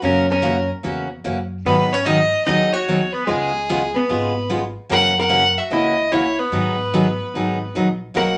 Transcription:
0.02 F#2 C#3 E3 A#3 C#4 F#4 A#4
0.30 C#4 A#4
0.42 C#3 E3 A#3 C#4 F#4
0.83 E2 C#3 E3 A#3 C#4 F#4
1.24 F#2 C#3 E3 A#3 C#4 F#4
1.65 G#2 D#3 F#3 B3 D#4 G#4 B4
1.92 C#4 C#5
2.06 D#3 F#3 B3 D#4 G#4 D#5
2.45 D#2 D#3 F#3 B3 D#4 G#4 D#5
2.73 F#4 C#5
2.88 D#3 F#3 B3 D#4 G#4
3.12 B3 B4
3.26 C#2 C#3 G#3 B3 F4 G#4
3.69 C#3 G#3 B3 F4 G#4
3.94 B3 B4
4.09 G#1 C#3 G#3 B3 F4 G#4
4.49 C#3 G#3 B3 F4 G#4
4.89 F#2 C#3 E3 A#3 C#4 F#4 A#4 F#5
5.19 A#4 F#5
5.29 C#3 E3 A#3 C#4 F#4
5.58 F#4 E5
5.70 C#2 C#3 E3 A#3 C#4 E4 F#4 D#5
6.12 C#3 E3 A#3 C#4 E4 F#4 C#5
6.39 B3 B4
6.52 G#2 D#3 F#3 B3 D#4 G#4
6.94 D#3 F#3 B3 D#4 G#4
7.34 G#1 D#3 F#3 B3 D#4 G#4
7.75 A#1 D#3 F#3 B3 D#4 G#4
8.14 B1 B2 F#3 A#3 D#4 F#4 A#4 F#5

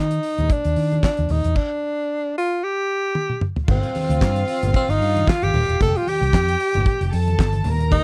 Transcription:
Already playing: D#3
0.00 D#4
0.11 closed hi-hat
0.23 open hi-hat
0.38 D#2, closed hi-hat, low conga
0.50 D4, kick, closed hi-hat
0.65 D#2, closed hi-hat
0.76 D#3, open hi-hat
0.91 closed hi-hat, high conga
1.03 D4, kick, snare, clap
1.17 D#2, closed hi-hat, high conga
1.29 D#2 D#4, open hi-hat, low conga
1.44 E2, closed hi-hat
1.55 D4, kick, crash
2.38 F4
2.64 G4
3.15 high tom
3.30 mid tom
3.41 mid tom
3.56 floor tom
3.68 G1 C4 F4 F5, kick, crash, muted conga, low conga
3.83 closed hi-hat
3.95 open hi-hat, high conga
4.09 D2, closed hi-hat
4.21 G2, kick, snare, clap
4.36 closed hi-hat, muted conga
4.48 open hi-hat
4.62 G1, closed hi-hat, low conga
4.74 C4, kick, closed hi-hat, muted conga
4.88 G1 D#4, closed hi-hat, muted conga
5.01 G2, open hi-hat
5.16 closed hi-hat, high conga
5.28 F4, kick, snare, clap, muted conga
5.42 G1 G4, closed hi-hat, muted conga, high conga
5.54 D#1, open hi-hat, low conga
5.68 E1, closed hi-hat
5.81 F1 G4 A4 G5, kick, closed hi-hat, muted conga, low conga
5.96 F4, closed hi-hat
6.07 G4, open hi-hat, high conga
6.21 C2, closed hi-hat
6.33 F2, kick, snare, clap
6.48 closed hi-hat
6.60 open hi-hat
6.74 G1, closed hi-hat, low conga
6.86 kick, closed hi-hat, muted conga
6.99 F1, closed hi-hat, muted conga
7.12 F2 A4 A5, open hi-hat
7.27 closed hi-hat, high conga
7.38 G1, kick, snare, clap, muted conga
7.53 closed hi-hat, high conga
7.64 D#2 A#4 A#5, open hi-hat, low conga
7.80 closed hi-hat
7.91 D#4, kick, closed hi-hat, muted conga, low conga

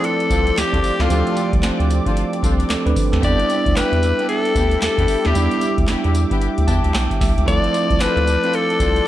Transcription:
Already playing: F3 A3 C4 E4 D5 D6
0.04 A4, closed hi-hat
0.20 closed hi-hat
0.30 C2 C4 D4 F4 A4, kick, closed hi-hat, tambourine
0.47 closed hi-hat
0.57 D2 G4, snare, clap, closed hi-hat, tambourine
0.72 D2 C4 D4 F4 A4, kick, closed hi-hat
0.84 open hi-hat, tambourine
0.99 C#2 C4 D4 F4 A4, snare, closed hi-hat
1.09 D2 F3 A3 C4 D4 F4 G4 A4, closed hi-hat, tambourine
1.27 closed hi-hat
1.37 closed hi-hat, tambourine
1.53 C2, kick, closed hi-hat
1.62 C4 D4 F4 A4, snare, clap, closed hi-hat, tambourine
1.80 D2, closed hi-hat
1.90 closed hi-hat, tambourine
2.05 C4 D4 F4 A4, kick, closed hi-hat
2.17 closed hi-hat
2.33 closed hi-hat
2.43 C2 C4 D4 F4 A4, kick, closed hi-hat, tambourine
2.60 closed hi-hat
2.70 D2 C4 A4, snare, clap, closed hi-hat, tambourine
2.86 D2 D4 B4, closed hi-hat
2.96 kick, open hi-hat, tambourine
3.12 D#2 C4 A4, snare, closed hi-hat
3.21 G3 B3 D4 E4 G4 D5 E5 D6, kick, closed hi-hat, tambourine
3.40 closed hi-hat
3.50 closed hi-hat, tambourine
3.66 D2, kick, closed hi-hat
3.76 B3 D4 E4 G4 B4, snare, clap, closed hi-hat, tambourine
3.92 E2, closed hi-hat
4.03 closed hi-hat, tambourine
4.18 B3 D4 E4 G4, closed hi-hat
4.29 A4, closed hi-hat
4.45 closed hi-hat
4.55 D2 B3 D4 E4 G4, kick, closed hi-hat, tambourine
4.71 closed hi-hat
4.82 E2 A4, snare, clap, closed hi-hat, tambourine
4.98 E2 B3 D4 E4 G4, kick, closed hi-hat
5.08 open hi-hat, tambourine
5.25 D#2 B3 D4 E4 G4, snare, closed hi-hat
5.34 E2 G3 B3 D4 E4 G4, closed hi-hat, tambourine
5.51 closed hi-hat
5.61 closed hi-hat, tambourine
5.78 D2, kick, closed hi-hat
5.88 B3 D4 E4 G4, snare, clap, closed hi-hat, tambourine
6.04 E2, closed hi-hat
6.14 closed hi-hat, tambourine
6.30 B3 D4 E4 G4, kick, closed hi-hat
6.42 closed hi-hat
6.58 D2, closed hi-hat
6.67 E2 B3 D4 E4 G4 A5, kick, closed hi-hat, tambourine
6.84 D2, closed hi-hat
6.94 B1 G5, snare, clap, closed hi-hat, tambourine
7.11 kick, closed hi-hat
7.21 C2 E5, kick, snare, open hi-hat, tambourine
7.37 C#2, closed hi-hat
7.46 D2 F3 A3 C4 D4 E4 F4 A4 D5 A5, kick, closed hi-hat, tambourine
7.64 closed hi-hat
7.74 closed hi-hat, tambourine
7.90 C2, kick, closed hi-hat
8.00 D2 C4 D4 F4 A4 B4, snare, clap, closed hi-hat, tambourine
8.16 D2, closed hi-hat
8.27 closed hi-hat, tambourine
8.43 C4 D4 F4 A4, closed hi-hat
8.54 A4, closed hi-hat
8.70 closed hi-hat
8.80 C2 C4 D4 F4 A4, kick, closed hi-hat, tambourine
8.96 closed hi-hat

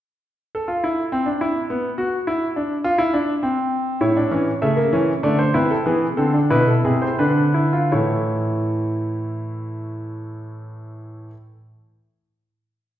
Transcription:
0.55 A4
0.68 F4
0.84 E4
1.12 C4
1.26 D4
1.41 E4
1.70 B3
1.98 F#4
2.27 E4
2.56 D4
2.84 F4
2.98 E4
3.14 D4
3.43 C4
4.01 A2 E4 C#5
4.17 D4
4.31 E3 C#4
4.62 C#3 A3 E5
4.76 A#3
4.93 E3 C#4
5.23 D3 A3 D5
5.39 C5
5.54 C3 E4 B4
5.70 A4
5.86 E3 B3 G#4
6.17 D3 C4 A4
6.34 D4
6.50 B2 E4 B4
6.67 A4
6.84 C3 G#4
7.02 C5
7.19 D3 D4 B4
7.54 E4
7.73 F4
7.92 A2 E3 A3 E4 C#5

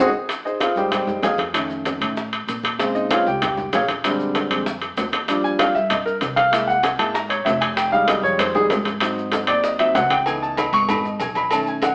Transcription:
0.29 high bongo, high conga, high timbale, maracas
0.45 D#4 G#4 C5 D#5, high conga, maracas
0.60 F4 G#4 C5 F5, high bongo, high conga, high timbale, maracas
0.76 F2 G3 G#3 D#4 G4 C5 D#5 G5, high bongo, high conga, maracas
0.92 G4 C5 D#5 G5, high bongo, high conga, low conga, high timbale, maracas
1.07 high bongo, high conga, low conga, maracas
1.23 F2 G#4 D#5 F5 G#5, high bongo, low bongo, high conga, high timbale, low timbale, maracas
1.38 high bongo, high conga, high timbale, maracas
1.53 D#3 A3 C#4, high bongo, high conga, high timbale, maracas
1.70 high conga, maracas
1.85 high bongo, high conga, high timbale, maracas
2.01 A2 D#3 A3 C#4, high bongo, high conga, high timbale, maracas
2.16 high bongo, high conga, maracas
2.33 high bongo, high conga, high timbale, maracas
2.47 A#2, high bongo, low bongo, high conga, high timbale, maracas
2.63 high bongo, high conga, high timbale, maracas
2.79 C#3 G#3 C4, high bongo, high conga, high timbale, maracas
2.95 D#4 D#5, high conga, maracas
3.11 F4 C5 C#5 F5, high bongo, high conga, high timbale, maracas
3.26 C#2 G4 G5, high bongo, high conga, maracas
3.42 G4 G5, high bongo, high conga, low conga, high timbale, maracas
3.57 high bongo, high conga, low conga, maracas
3.73 A#1 G#4 C#5 F5 G#5, high bongo, low bongo, high conga, high timbale, low timbale, maracas
3.88 high bongo, high conga, high timbale, maracas
4.04 D3 G3 G#3 C4, high bongo, high conga, high timbale, maracas
4.20 high conga, maracas
4.35 high bongo, high conga, high timbale, maracas
4.51 F2 D3 G3 G#3 C4, high bongo, high conga, high timbale, maracas
4.66 high bongo, high conga, maracas
4.82 high bongo, high conga, high timbale, maracas
4.97 D#2, high bongo, low bongo, high conga, high timbale, low timbale, maracas
5.12 high bongo, high conga, high timbale, maracas
5.28 F3 G3 D4, high bongo, high conga, high timbale, maracas
5.44 G#5, high conga, maracas
5.59 F5, high bongo, high conga, high timbale, maracas
5.75 G2 E5, high bongo, high conga, maracas
5.90 D#5, high bongo, high conga, low conga, high timbale, maracas
6.06 A#4, high bongo, high conga, maracas
6.21 C2, high bongo, low bongo, high conga, high timbale, maracas
6.36 F5, high bongo, high conga, high timbale, maracas
6.52 G#3 A#3 E4 E5, high bongo, high conga, high timbale, maracas
6.68 F#5, high conga, maracas
6.83 G#5, high bongo, high conga, high timbale, maracas
6.99 G#1 G#3 A#3 E4 A5, high bongo, high timbale, maracas
7.14 A#5, high bongo, high conga, maracas
7.29 C#5, high bongo, high conga, high timbale, maracas
7.45 F1 E5, high bongo, low bongo, high conga, high timbale, low timbale, maracas
7.61 G#5, high bongo, high timbale, maracas
7.77 G5, high bongo, high conga, high timbale, maracas
7.91 G3 G#3 D#4 F5, high conga, maracas
8.08 D#5, high bongo, high conga, high timbale, maracas
8.23 F2 C#5, high bongo, high conga, maracas
8.39 C5, high bongo, high conga, low conga, high timbale, maracas
8.54 G3 G#3 D#4 G#4, high bongo, high conga, low conga, maracas
8.70 G#2, high bongo, low bongo, high conga, high timbale, low timbale, maracas
8.85 high bongo, high conga, high timbale, maracas
9.00 F#3 C4 D#4, high bongo, high conga, high timbale, maracas
9.18 high conga, maracas
9.32 high bongo, high conga, high timbale, maracas
9.47 D#2 D5, high bongo, high conga, high timbale, maracas
9.64 D#5, high bongo, high conga, maracas
9.79 F#3 C4 D#4 E5, high bongo, high conga, high timbale, maracas
9.95 C#2 F#5, high bongo, low bongo, high conga, high timbale, low timbale, maracas
10.10 G5, high bongo, high conga, high timbale, maracas
10.26 E3 B3 D#4 G#5, cowbell, high conga, low agogo, maracas
10.42 A5, high conga, maracas
10.57 B5, cowbell, high conga, low agogo, maracas
10.72 G#1 C#6, high conga, low agogo, maracas
10.89 E3 B3 D#4 B5, cowbell, high conga, low conga, low agogo, maracas
11.05 D#5, high conga, maracas
11.19 B1 G#5, cowbell, high conga, low agogo, maracas
11.35 B5, cowbell, high conga, low agogo, maracas
11.51 D#3 A3 C#4 A5, cowbell, high conga, low agogo, maracas
11.67 G#5, high conga, maracas
11.82 F#5, cowbell, high conga, low agogo, maracas

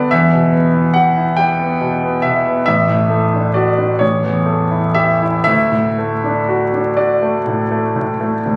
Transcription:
Already playing: D3 B3 D4 G4 D5 E5
0.11 E2 E5
0.33 B2
0.52 B3
0.74 E4
0.94 G4 F#5
1.17 E4
1.36 G4 G5
1.59 B3
1.81 B2
2.03 B3
2.22 B2 E5
2.46 B3
2.66 A1 E5
2.89 A2
3.10 A3
3.34 D4
3.54 F#4 D5
3.78 D4
3.99 A1 C#5
4.24 E2
4.46 A3
4.71 E4
4.94 G4 E5
5.22 E4
5.44 D2 E5
5.72 A2
5.98 A3
6.24 D4
6.48 F#4
6.74 D4
6.97 F#4 D5
7.22 A3
7.47 A2
7.71 A3
7.96 A2
8.20 A3
8.46 D2

